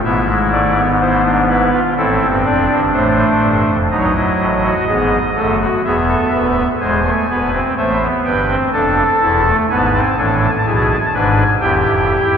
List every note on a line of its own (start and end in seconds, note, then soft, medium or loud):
0.04 1.71 G#1 medium
0.04 1.71 G#2 medium
0.04 0.25 B3 medium
0.04 0.87 E4 medium
0.04 0.34 E5 medium
0.28 0.49 G#3 medium
0.52 0.73 A3 medium
0.52 0.82 D5 medium
0.76 1.80 B3 medium
1.01 1.22 E4 medium
1.01 1.31 C5 medium
1.24 1.45 D4 medium
1.49 1.70 E4 medium
1.49 1.79 B4 medium
1.73 1.94 F4 medium
1.97 2.18 A1 medium
1.97 2.18 A2 medium
1.97 2.81 C4 medium
1.97 2.27 E4 medium
1.97 2.27 A4 medium
2.22 2.43 G1 medium
2.22 2.43 G2 medium
2.45 2.66 F1 medium
2.45 2.66 F2 medium
2.45 3.71 D4 medium
2.45 2.75 D5 medium
2.70 2.91 G1 medium
2.70 2.91 G2 medium
2.93 3.23 A1 medium
2.93 3.23 A2 medium
2.93 3.77 A3 medium
2.93 3.77 C5 medium
3.42 3.63 G1 medium
3.42 3.64 G2 medium
3.67 3.88 F1 medium
3.67 3.88 F2 medium
3.90 4.21 B1 medium
3.90 4.21 B2 medium
3.90 4.75 F#3 medium
3.90 4.12 D#4 medium
3.90 3.97 D#5 medium
3.99 4.06 C#5 medium
4.05 5.60 D#5 medium
4.14 4.45 E4 medium
4.39 4.69 A1 medium
4.39 4.69 A2 medium
4.63 4.85 F#4 medium
4.87 5.18 G#1 medium
4.87 5.18 G#2 medium
4.87 5.18 B3 medium
4.87 5.18 G#4 medium
5.35 5.66 F#1 medium
5.35 5.66 F#2 medium
5.35 5.66 A3 medium
5.35 5.57 A4 medium
5.60 5.82 F#4 medium
5.84 6.15 E1 medium
5.84 6.15 E2 medium
5.84 6.68 B3 medium
5.84 6.06 G#4 medium
5.84 6.68 E5 medium
6.09 6.30 A4 medium
6.33 6.63 D1 medium
6.33 6.63 D2 medium
6.33 6.63 B4 medium
6.80 7.11 E1 medium
6.80 7.10 E2 medium
6.80 7.02 G#3 medium
6.80 7.11 C5 medium
6.80 7.64 G#5 medium
7.05 7.26 A3 medium
7.29 7.60 D1 medium
7.29 7.60 D2 medium
7.29 7.50 B3 medium
7.29 7.60 B4 medium
7.53 7.74 C4 medium
7.77 8.07 A1 medium
7.77 8.07 A2 medium
7.77 7.98 A3 medium
7.77 8.07 C5 medium
7.77 8.07 E5 medium
8.01 8.31 B3 medium
8.24 8.55 G1 medium
8.24 8.55 G2 medium
8.24 8.55 B4 medium
8.24 8.55 G5 medium
8.49 8.70 C4 medium
8.73 9.03 F1 medium
8.73 9.03 F2 medium
8.73 9.03 D4 medium
8.73 9.56 A4 medium
8.73 9.56 A5 medium
9.21 9.51 E1 medium
9.21 9.51 E2 medium
9.21 9.42 E4 medium
9.45 9.67 A3 medium
9.70 10.00 G#1 medium
9.70 10.00 G#2 medium
9.70 9.91 B3 medium
9.70 10.00 B4 medium
9.70 9.78 G#5 medium
9.77 9.86 A5 medium
9.85 9.94 G#5 medium
9.93 10.14 C4 medium
9.93 10.02 A5 medium
10.02 10.10 G#5 medium
10.09 10.18 A5 medium
10.17 10.47 A1 medium
10.17 10.47 A2 medium
10.17 10.47 D4 medium
10.17 10.47 A4 medium
10.17 10.26 G#5 medium
10.25 10.34 A5 medium
10.34 10.42 G#5 medium
10.42 10.50 A5 medium
10.50 10.58 G#5 medium
10.57 10.66 A5 medium
10.66 10.96 B1 medium
10.66 10.96 B2 medium
10.66 10.96 E4 loud
10.66 10.96 G#4 medium
10.66 10.74 G#5 medium
10.74 10.82 A5 medium
10.81 10.90 G#5 medium
10.89 10.98 A5 medium
10.97 11.06 G#5 medium
11.05 11.14 A5 medium
11.13 11.44 G#1 medium
11.13 11.44 G#2 medium
11.13 11.43 D4 medium
11.13 11.43 B4 medium
11.13 11.55 G#5 medium
11.60 11.82 E1 medium
11.60 11.82 E2 medium
11.60 12.38 E4 medium
11.60 12.38 G4 medium
11.60 12.38 G5 medium
11.85 12.15 F1 medium
11.85 12.15 F2 medium
12.34 12.38 G1 medium
12.34 12.38 G2 medium